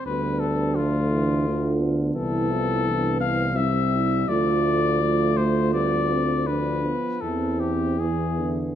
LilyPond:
<<
  \new Staff \with { instrumentName = "Cornet" } { \time 3/4 \key a \minor \tempo 4 = 83 b'8 a'8 f'4. r8 | a'4. f''8 e''4 | d''4. c''8 d''4 | b'4 a'8 g'8 gis'8 r8 | }
  \new Staff \with { instrumentName = "French horn section" } { \time 3/4 \key a \minor d'2 f'4 | e'4 d'8 c'8 e'8 e'8 | f'4 f'2 | d'8 b8 c'4 e'4 | }
  \new Staff \with { instrumentName = "Euphonium" } { \time 3/4 \key a \minor b4 a4 a8 b8~ | b2 c'4 | a4 a4 b8 c'8 | d'8 r8 c'4 b4 | }
  \new Staff \with { instrumentName = "Euphonium" } { \clef bass \time 3/4 \key a \minor g4 f8 e8 d4 | e8 f8 e4 g4 | f4 f8 a8 g8 r8 | f4 e4 e8 d8 | }
  \new Staff \with { instrumentName = "Tuba" } { \clef bass \time 3/4 \key a \minor d,2. | c,2. | d,2.~ | d,8 r8 e,2 | }
>>